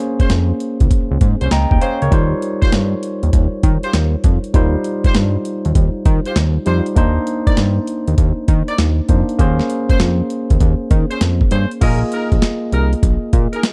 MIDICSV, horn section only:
0, 0, Header, 1, 2, 480
1, 0, Start_track
1, 0, Tempo, 606061
1, 1677, Time_signature, 4, 2, 24, 8
1, 10873, End_track
2, 0, Start_track
2, 0, Title_t, "Horn section"
2, 0, Program_c, 0, 61
2, 155, Note_on_c, 0, 61, 80
2, 157, Note_on_c, 0, 68, 72
2, 160, Note_on_c, 0, 72, 89
2, 227, Note_off_c, 0, 61, 0
2, 228, Note_off_c, 0, 68, 0
2, 229, Note_off_c, 0, 72, 0
2, 1114, Note_on_c, 0, 61, 73
2, 1117, Note_on_c, 0, 68, 66
2, 1119, Note_on_c, 0, 72, 80
2, 1186, Note_off_c, 0, 61, 0
2, 1187, Note_off_c, 0, 68, 0
2, 1188, Note_off_c, 0, 72, 0
2, 1434, Note_on_c, 0, 61, 74
2, 1436, Note_on_c, 0, 68, 65
2, 1439, Note_on_c, 0, 72, 83
2, 1575, Note_off_c, 0, 61, 0
2, 1576, Note_off_c, 0, 68, 0
2, 1577, Note_off_c, 0, 72, 0
2, 2073, Note_on_c, 0, 65, 84
2, 2075, Note_on_c, 0, 67, 72
2, 2077, Note_on_c, 0, 72, 93
2, 2145, Note_off_c, 0, 65, 0
2, 2146, Note_off_c, 0, 67, 0
2, 2148, Note_off_c, 0, 72, 0
2, 3033, Note_on_c, 0, 65, 73
2, 3035, Note_on_c, 0, 67, 67
2, 3038, Note_on_c, 0, 72, 85
2, 3106, Note_off_c, 0, 65, 0
2, 3107, Note_off_c, 0, 67, 0
2, 3108, Note_off_c, 0, 72, 0
2, 3993, Note_on_c, 0, 65, 81
2, 3996, Note_on_c, 0, 67, 71
2, 3998, Note_on_c, 0, 72, 85
2, 4065, Note_off_c, 0, 65, 0
2, 4067, Note_off_c, 0, 67, 0
2, 4068, Note_off_c, 0, 72, 0
2, 4952, Note_on_c, 0, 65, 76
2, 4954, Note_on_c, 0, 67, 73
2, 4957, Note_on_c, 0, 72, 80
2, 5025, Note_off_c, 0, 65, 0
2, 5026, Note_off_c, 0, 67, 0
2, 5028, Note_off_c, 0, 72, 0
2, 5272, Note_on_c, 0, 65, 80
2, 5274, Note_on_c, 0, 67, 68
2, 5277, Note_on_c, 0, 72, 89
2, 5414, Note_off_c, 0, 65, 0
2, 5415, Note_off_c, 0, 67, 0
2, 5417, Note_off_c, 0, 72, 0
2, 5913, Note_on_c, 0, 63, 76
2, 5915, Note_on_c, 0, 70, 68
2, 5918, Note_on_c, 0, 74, 90
2, 5985, Note_off_c, 0, 63, 0
2, 5986, Note_off_c, 0, 70, 0
2, 5988, Note_off_c, 0, 74, 0
2, 6874, Note_on_c, 0, 63, 79
2, 6876, Note_on_c, 0, 70, 70
2, 6878, Note_on_c, 0, 74, 87
2, 6946, Note_off_c, 0, 63, 0
2, 6947, Note_off_c, 0, 70, 0
2, 6948, Note_off_c, 0, 74, 0
2, 7834, Note_on_c, 0, 61, 80
2, 7837, Note_on_c, 0, 68, 68
2, 7839, Note_on_c, 0, 72, 86
2, 7906, Note_off_c, 0, 61, 0
2, 7908, Note_off_c, 0, 68, 0
2, 7909, Note_off_c, 0, 72, 0
2, 8796, Note_on_c, 0, 61, 77
2, 8798, Note_on_c, 0, 68, 68
2, 8800, Note_on_c, 0, 72, 84
2, 8867, Note_off_c, 0, 61, 0
2, 8868, Note_off_c, 0, 68, 0
2, 8869, Note_off_c, 0, 72, 0
2, 9116, Note_on_c, 0, 61, 76
2, 9119, Note_on_c, 0, 68, 71
2, 9122, Note_on_c, 0, 72, 83
2, 9256, Note_off_c, 0, 61, 0
2, 9257, Note_off_c, 0, 68, 0
2, 9259, Note_off_c, 0, 72, 0
2, 9357, Note_on_c, 0, 63, 85
2, 9359, Note_on_c, 0, 68, 79
2, 9362, Note_on_c, 0, 70, 94
2, 9496, Note_off_c, 0, 63, 0
2, 9498, Note_off_c, 0, 68, 0
2, 9499, Note_off_c, 0, 70, 0
2, 9597, Note_on_c, 0, 63, 76
2, 9599, Note_on_c, 0, 68, 72
2, 9602, Note_on_c, 0, 70, 79
2, 9737, Note_off_c, 0, 63, 0
2, 9738, Note_off_c, 0, 68, 0
2, 9739, Note_off_c, 0, 70, 0
2, 10077, Note_on_c, 0, 63, 71
2, 10079, Note_on_c, 0, 68, 67
2, 10081, Note_on_c, 0, 70, 80
2, 10216, Note_off_c, 0, 63, 0
2, 10218, Note_off_c, 0, 68, 0
2, 10219, Note_off_c, 0, 70, 0
2, 10714, Note_on_c, 0, 63, 74
2, 10716, Note_on_c, 0, 68, 73
2, 10719, Note_on_c, 0, 70, 84
2, 10786, Note_off_c, 0, 63, 0
2, 10787, Note_off_c, 0, 68, 0
2, 10788, Note_off_c, 0, 70, 0
2, 10873, End_track
0, 0, End_of_file